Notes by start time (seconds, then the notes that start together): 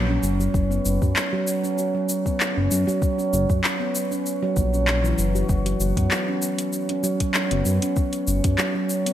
Already playing: A#1
0.09 C#4
0.23 F#1, shaker
0.40 F#3, shaker
0.54 F#1, kick, shaker
0.71 B3, shaker
0.85 F#1, shaker
1.02 F#2 C#4, kick, shaker
1.16 clap, shaker
1.33 F#3
1.47 shaker
1.64 C#4, shaker
1.78 shaker
1.95 F#3
2.09 shaker
2.26 B3, kick, shaker
2.40 clap, shaker
2.56 F#1 C#4
2.71 F#2, shaker
2.87 F#3, shaker
3.02 kick, shaker
3.18 C#4, shaker
3.33 F#1, shaker
3.49 F#2 F#3, kick, shaker
3.64 clap, shaker
3.80 B3
3.95 shaker
4.12 C#4, shaker
4.26 shaker
4.42 F#3
4.57 A#1, kick, shaker
4.73 C#4, shaker
4.88 clap, shaker
5.04 E3, shaker
5.18 F#1, shaker
5.35 F#4, shaker
5.49 F#1 F#3, kick, shaker
5.66 F#3, closed hi-hat, shaker
5.80 F#1, shaker
5.97 F#2 B3, kick, closed hi-hat, shaker
6.11 clap, shaker
6.28 C#4
6.42 shaker
6.59 closed hi-hat, shaker
6.73 shaker
6.89 C#4, closed hi-hat
7.04 F#3, shaker
7.20 F#3, kick, closed hi-hat, shaker
7.34 clap, shaker
7.51 F#1 B3, closed hi-hat
7.65 F#2, shaker
7.82 C#4, closed hi-hat, shaker
7.96 kick, shaker
8.13 closed hi-hat, shaker
8.27 F#1, shaker
8.44 F#2 C#4, kick, closed hi-hat, shaker
8.58 F#3, clap, shaker
8.75 F#3
8.90 shaker
9.06 B3, closed hi-hat, shaker